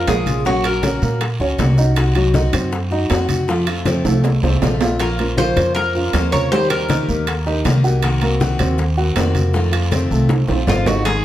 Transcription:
0.07 A#1 F3 G#3 A#3 C#4 F4 G#4 A#4, high bongo, low bongo, high conga, high timbale, low timbale, short guiro
0.26 G#3 C#4 F4, high conga, high timbale, short guiro
0.45 F#3 A#3 C#4 F#4, high bongo, high conga, long guiro
0.64 C#4 F#4 A#4, high bongo, high conga, high timbale
0.83 A#3 C#4 F#4 C#5, high bongo, high conga, high timbale, short guiro
1.02 A#2 A#3 A#4, short guiro
1.21 muted steel-string acoustic guitar stroke, high bongo, high conga, high timbale, long guiro
1.40 C#2 C#4 F#4 C#5, high bongo, high conga
1.58 C2 A#3 C#4 F#4, high bongo, low bongo, high conga, high timbale, low timbale, short guiro
1.77 C#4 D#4 F#4 D#5, high bongo, short guiro
1.96 C4 D#4 F#4, high bongo, high conga, high timbale, long guiro
2.15 F#3 D#4 F#4, high timbale
2.34 C4 D#4 F#4 D#5, high bongo, high conga, short guiro
2.53 F#2 C4 C5, high conga, high timbale, short guiro
2.72 muted steel-string acoustic guitar stroke, high bongo, high conga, long guiro
2.91 D#4 F#4 D#5, high conga
3.10 F2 C4 D#4 F#4 C5, high bongo, low bongo, high conga, high timbale, low timbale, short guiro
3.29 D#4 F#4, high conga, high timbale, short guiro
3.48 C3 F3 A3 C4 F4, high bongo, long guiro
3.67 A3 C4 F4, high bongo, high conga, high timbale
3.86 C3 F3 A3 C4 F4 C5, high bongo, high conga, high timbale, short guiro
4.05 C2 A3 A4, high bongo, high conga, high timbale, short guiro
4.24 muted steel-string acoustic guitar stroke, high bongo, high conga, low timbale, long guiro
4.42 C2 A3 C4 F4 C5, low bongo, high conga, low timbale
4.61 A#1 C3 F3 A3 C4 F4, low bongo, high conga, low timbale, short guiro
4.81 A3 C4 F4 F5, low bongo, high conga, low timbale, short guiro
5.00 F3 A#3 C#4 F4 A#4 C5, high bongo, high conga, high timbale, long guiro
5.19 A#3 C#4 F4 A#4 C5, high conga, high timbale
5.38 F3 A#3 C#4 F4 C5 F5, high bongo, high conga, short guiro
5.57 F2 C5, high conga, high timbale, short guiro
5.75 F4 A#4, muted steel-string acoustic guitar stroke, high bongo, high conga, long guiro
5.95 C#4 F4 C5 F5, high conga
6.13 D#2 F3 A#3 C4 C#4 F4 C5, high bongo, low bongo, high conga, high timbale, low timbale, short guiro
6.32 C#4 F4 A#4 C5 C#5, high conga, high timbale, short guiro
6.51 D#3 G3 A#3 D#4 G4 C5, high bongo, long guiro
6.70 A#3 D#4 G4 A#4, high bongo, high conga, high timbale
6.88 D#3 A#3 D#4 G4 D#5, high bongo, high conga, high timbale, short guiro
7.08 D#2 A#3 A#4, short guiro
7.27 muted steel-string acoustic guitar stroke, high bongo, high conga, high timbale, long guiro
7.46 A#3 D#4 G4 D#5, high bongo, high conga
7.65 C2 D#3 A#3 D#4 G4, high bongo, low bongo, high conga, high timbale, low timbale, short guiro
7.84 A#3 D#4 F#4 G4 F#5, high bongo, short guiro
8.02 C3 D#3 A#3 C4 F#4, high bongo, high conga, high timbale, long guiro
8.22 A#3 C4 F#4 A#4, high conga, high timbale
8.40 C3 D#3 A#3 C4 F#4 F#5, high bongo, high conga, short guiro
8.59 D#2 C4 C5, high conga, high timbale, short guiro
8.78 muted steel-string acoustic guitar stroke, high bongo, high conga, long guiro
8.97 A#3 C4 F#4 F#5, high conga
9.16 F2 C3 D#3 A#3 C4 F#4 C5, high bongo, low bongo, high conga, high timbale, low timbale, short guiro
9.35 A#3 C4 F#4, high conga, high timbale, short guiro
9.53 C3 D#3 F3 A3 C4 F4, high bongo, high conga, long guiro
9.72 A3 C4 F4, high bongo, high conga, high timbale
9.91 C3 D#3 A3 C4 F4 C5, high bongo, high conga, high timbale, short guiro
10.11 C2 A3 A4, short guiro
10.29 muted steel-string acoustic guitar stroke, high bongo, high conga, high timbale, long guiro
10.48 A#1 A3 C4 F4 C5, high bongo, low conga, high timbale
10.67 G#1 C3 D#3 A3 C4 F4, high bongo, low bongo, low conga, low timbale, short guiro
10.86 A3 C4 D#4 F4 F#4 D#5, high bongo, low conga, low timbale, short guiro
11.05 D#3 G#3 C4 D#4 G#4, high bongo, high conga, high timbale, long guiro

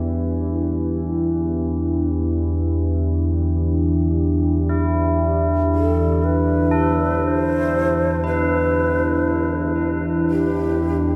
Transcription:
Already playing: E2 E3 D4 E4 G4
4.69 E4
5.75 A4
6.24 B4
6.71 A4
7.23 C5
8.24 B4
10.31 G4

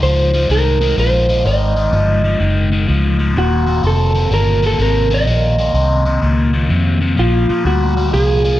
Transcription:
0.02 C#2 G#2 F3 C5
0.34 G#2 F3
0.49 C2 G#2 D#3 A#4
0.81 G#2 D#3
0.97 A#1 G#2 F3 C5
1.29 G#2 F3
1.45 G#1 G#2 D#3 D#5
1.76 G#2 D#3
1.92 G1 G#2 F3
2.24 G#2 F3
2.39 F#1 G#2 D#3
2.72 G#2 D#3
2.88 C#2 G#2 F3
3.19 G#2 F3
3.35 D#1 D#2 A#2 F#4
3.67 D#2 A#2
3.83 F1 D#2 C3 A4
4.15 D#2 C3
4.31 G1 D#2 A#2 A#4
4.62 D#2 A#2 A4
4.79 G#1 D#2 C3 A#4
5.10 D#2 C3 D#5
5.26 A#1 D#2 A#2
5.58 D#2 A#2
5.74 C2 D#2 C3
6.05 D#2 C3
6.21 C#2 D#2 A#2
6.53 D#2 A#2
6.69 D#2 F2 C3
7.01 D#2 C3
7.17 A#1 A#2 F3 F4
7.49 A#2 F3
7.65 D2 A#2 G3 F#4
7.97 A#2 G3
8.13 C2 A#2 F3 G#4
8.44 A#2 F3

